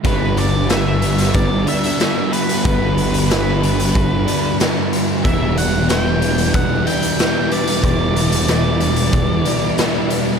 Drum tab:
HH |x-x-x-xxx-xxx-xx|x-xxx-xxx-x-x-x-|x-x-x-xxx-xxx-xx|x-xxx-xxx-x-x-x-|
SD |----o--o----o---|----o-------o---|----o-------o---|----o-------o---|
BD |o-------o-------|o-------o-------|o-------o-------|o-------o-------|